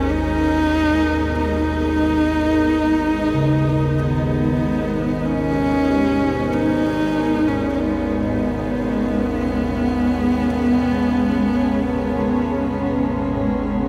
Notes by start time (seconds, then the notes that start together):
Already playing: G#1 D#2 G#3 B3 C#4 D#4
0.10 D#4
1.39 D#4
3.33 C#3
3.98 D#3 B3
5.26 C#4
5.90 G4
6.53 D#4
7.18 D#4
7.25 C#4
7.48 C#4
7.72 C#4
7.80 B3